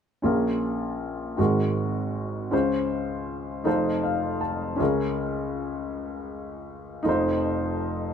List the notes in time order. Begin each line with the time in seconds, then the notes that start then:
0.22 A#1 A#2 C#4 F4 G#4 A#4
1.37 G#1 G#2 C4 F#4 G#4 A#4
2.51 C#2 C#3 C#4 F4 G#4 C5
3.64 F1 F2 D#4 F4 A4 C5
4.03 F5
4.41 A5
4.76 C#2 C#3 C#4 F4 G#4
4.82 A#4
7.03 F1 F2 D#4 F4 A4
7.09 C5